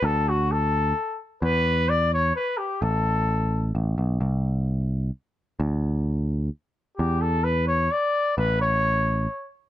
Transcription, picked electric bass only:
\new Staff \with { instrumentName = "Picked electric bass" } { \clef bass \time 3/4 \key e \dorian \tempo 4 = 130 d,2 r4 | e,2 r4 | a,,2 a,,8 b,,8 | c,2 r4 |
d,2 r4 | e,2 r4 | a,,2 r4 | }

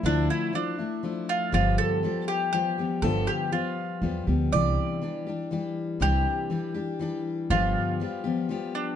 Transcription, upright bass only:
\new Staff \with { instrumentName = "Upright bass" } { \clef bass \time 3/4 \key g \mixolydian \tempo 4 = 120 d,8 r2 r8 | g,,8 r2 r8 | g,,8 r4. e,8 d,8 | c,8 r2 r8 |
c,8 r2 r8 | g,,8 r2 r8 | }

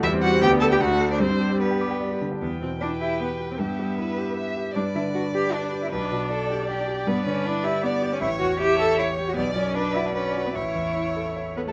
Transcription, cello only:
\new Staff \with { instrumentName = "Cello" } { \time 3/4 \key g \major \tempo 4 = 154 e'8 fis'8 g'8 a'16 g'16 fis'8. d'16 | c'4 b4. r8 | \key e \minor b8 c'8 d'8 e'8 b8. c'16 | b2~ b8 r8 |
d'8 e'8 fis'8 g'8 d'8. e'16 | d'2~ d'8 r8 | \key a \mixolydian b8 cis'8 d'8 e'8 b8. cis'16 | e'8 fis'8 g'8 a'8 e'8. fis'16 |
b8 cis'8 d'8 e'16 d'16 cis'8. b16 | e'2~ e'8 b16 a16 | }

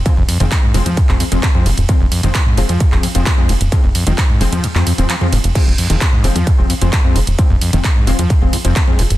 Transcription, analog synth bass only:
\new Staff \with { instrumentName = "Analog synth bass" } { \clef bass \time 4/4 \key f \minor \tempo 4 = 131 r16 f,,16 r16 f,,16 r8 f,,16 f,16 r16 f,,16 r16 f,,16 r8 f,,16 ees,,16 | r16 f,,16 r16 f,,16 r8 f,,16 f,16 r16 f,,16 r16 f,,16 r8 f,,16 ees,,16 | r16 f,,16 r16 f,,16 r8 f,,16 f,16 r16 f,16 r16 ees,,16 r8 f,,16 f,,16 | r16 f,,16 r16 f,,16 r8 f,,16 f,16 r16 f,,16 r16 f,,16 r8 f,,16 ees,,16 |
r16 f,,16 r16 f,,16 r8 f,,16 f,16 r16 f,,16 r16 f,,16 r8 f,,16 ees,,16 | }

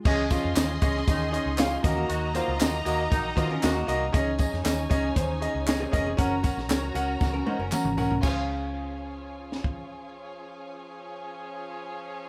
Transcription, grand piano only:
\new Staff \with { instrumentName = "Grand piano" } { \time 4/4 \key des \major \tempo 4 = 117 <des' aes' ees''>8 <des' aes' ees''>8 <des' aes' ees''>8 <des' aes' ees''>8 <des' aes' ees''>8 <des' aes' ees''>8 <des' aes' f''>8 <bes ges' ees''>8~ | <bes ges' ees''>8 <bes ges' c''>8 <bes ges' ees''>8 <bes ges' ees''>8 <bes ges' ees''>8 <bes ges' ees''>8 <bes ges' ees''>8 <bes ges' ees''>8 | <des' aes' ees''>8 <des' aes' ees''>8 <des' aes' ees''>8 <des' aes' ees''>8 <des' aes' c''>8 <des' aes' ees''>8 <des' aes' ees''>8 <des' aes' ees''>8 | <des' bes' ges''>8 <des' bes' ges''>8 <des' bes' des''>8 <des' bes' ges''>8 <des' bes' ges''>8 <des' bes' ges''>8 <des' bes' ges'' bes''>8 <des' bes' ges''>8 |
<des' aes' f''>1~ | <des' aes' f''>1 | }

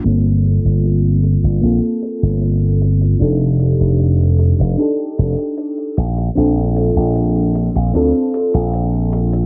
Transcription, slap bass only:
\new Staff \with { instrumentName = "Slap bass" } { \clef bass \time 4/4 \key g \minor \tempo 4 = 76 g,,8. g,,4 g,,16 bes,,16 r8 g,,4~ g,,16 | f,,8. f,,4 f,,16 r8 f,,16 r8. bes,,8 | bes,,8. bes,,4 bes,,16 d,16 r8 bes,,4~ bes,,16 | }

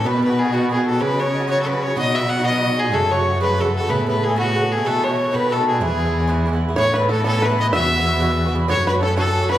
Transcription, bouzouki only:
\new Staff \with { instrumentName = "Bouzouki" } { \time 6/8 \key e \major \tempo 4. = 125 <b, dis b fis'>8 <b, dis b fis'>16 <dis b fis'>8 <dis b fis'>16 <b, dis b fis'>8 <b, dis b fis'>16 <dis b fis'>8 <dis b fis'>16 | <gis, fis cis' fis'>8 <gis, fis cis' fis'>16 <fis cis' fis'>8 <fis cis' fis'>16 <gis, fis cis' fis'>8 <gis, fis cis' fis'>16 <fis cis' fis'>8 <fis cis' fis'>16 | <b, fis dis' fis'>8 <b, fis dis' fis'>16 <fis dis' fis'>8 <fis dis' fis'>16 <b, fis dis' fis'>8 <b, fis dis' fis'>16 <fis dis' fis'>8 <fis dis' fis'>16 | <cis fis a fis'>8 <cis fis a fis'>16 <fis a fis'>8 <fis a fis'>16 <cis fis a fis'>8 <cis fis a fis'>16 <fis a fis'>8 <fis a fis'>16 |
<cis b e' a'>8 <cis b e' a'>16 <b e' a'>8 <b e' a'>16 <cis b e' a'>8 <cis b e' a'>16 <b e' a'>8 <b e' a'>16 | <b, e a fis'>8 <b, e a fis'>16 <e a fis'>8 <e a fis'>16 <b, dis a fis'>8 <b, dis a fis'>16 <dis a fis'>8 <dis a fis'>16 | <gis, e b e'>8 <gis, e b e'>16 <e b e'>8 <e b e'>16 <gis, e b e'>8 <gis, e b e'>16 <e b e'>8 <e b e'>16 | <a, e b e'>16 <e b e'>8 <e b e'>16 <a, e b e'>8 <a, e b e'>16 <e b e'>8 <e b e'>16 <a, e b e'>8 |
<b, e b fis'>16 <e b fis'>8 <e b fis'>16 <b, e b fis'>8 <b, e b fis'>16 <e b fis'>8 <e b fis'>16 <b, e b fis'>8 | <a, fis cis' fis'>16 <fis cis' fis'>8 <fis cis' fis'>16 <a, fis cis' fis'>8 <a, fis cis' fis'>16 <fis cis' fis'>8 <fis cis' fis'>16 <a, fis cis' fis'>8 | }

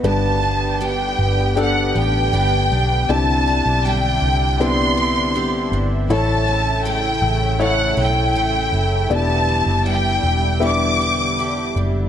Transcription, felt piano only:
<<
  \new Staff \with { instrumentName = "Felt piano" } { \time 4/4 \key g \major \tempo 4 = 80 <d' g' b'>2 <d' g' a'>2 | <c' d' e' g' d''>2 <b c' d' e' g'>2 | <e' a' cis''>2 <e' a' cis''>2 | <b d' e' g' d''>2 <b d' e' g' e''>2 | }
  \new Staff \with { instrumentName = "Felt piano" } { \clef bass \time 4/4 \key g \major g,4. r2 r8 | d4. r2 r8 | a,4. r2 r8 | e4. r2 r8 | }
>>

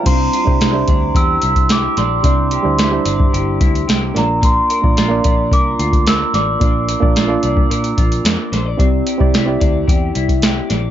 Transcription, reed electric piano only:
\new Staff \with { instrumentName = "Reed electric piano" } { \time 4/4 \key c \mixolydian \tempo 4 = 110 << { f''16 r2. r8. | r1 | r1 | r1 |
r1 | } \\ { <g d' e' c''>8 r16 <g d' e' c''>16 r16 <g d' e' c''>4. r4 r16 | <g d' e' d''>8 r16 <g d' e' c''>16 r16 <g d' e' c''>4. r8. <bes d' f' d''>8~ | <bes d' f' d''>8 r16 <bes d' f' d''>16 r16 <bes d' f' d''>4. r4 r16 | <bes d' f' d''>8 r16 <bes d' f' d''>16 r16 <bes d' f' d''>4. r4 r16 |
<c' e' g' d''>8 r16 <c' e' g' d''>16 r16 <c' e' g' d''>4. r4 r16 | } >> }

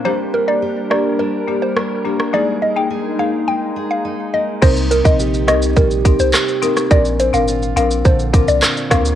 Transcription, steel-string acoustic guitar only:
\new Staff \with { instrumentName = "Steel-string acoustic guitar" } { \time 4/4 \key c \minor \tempo 4 = 105 <g g'>8 d'8 g'8 bes8 d'8 g'8 d'8 bes8 | <aes aes'>8 ees'8 aes'8 bes8 ees'8 aes'8 ees'8 bes8 | c8 ees'8 g'8 ees'8 g8 g'8 ees'8 bes8 | bes,8 c'8 f'8 c'8 d8 f'8 c'8 bes8 | }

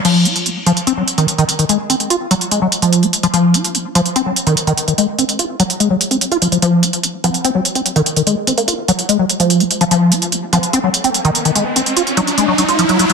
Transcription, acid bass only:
\new Staff \with { instrumentName = "Acid bass" } { \clef bass \time 4/4 \key f \phrygian \tempo 4 = 146 f8 f'8 f16 r16 f16 r16 c'16 ges16 r16 ees16 r16 ees16 r16 ees16 | aes16 r16 c'16 r16 f'16 r16 ges16 r16 aes16 ges16 r16 f8 c'16 r16 f16 | f8 f'8 f16 r16 f16 r16 c'16 ges16 r16 ees16 r16 ees16 r16 ees16 | aes16 r16 c'16 r16 f'16 r16 ges16 r16 aes16 ges16 r16 c'16 r16 f'16 f16 f16 |
f8 f'8 f16 r16 f16 r16 c'16 ges16 r16 c'16 r16 ees16 r16 ees16 | aes16 r16 c'16 r16 f'16 r16 ges16 r16 aes16 ges16 r16 f8 c'16 r16 f16 | f8 f'8 f16 r16 f16 r16 c'16 ges16 r16 c'16 r16 ees16 r16 ees16 | aes16 r16 c'16 r16 f'16 r16 ges16 r16 aes16 ges16 ges16 f'16 f16 ges16 ges16 ges16 | }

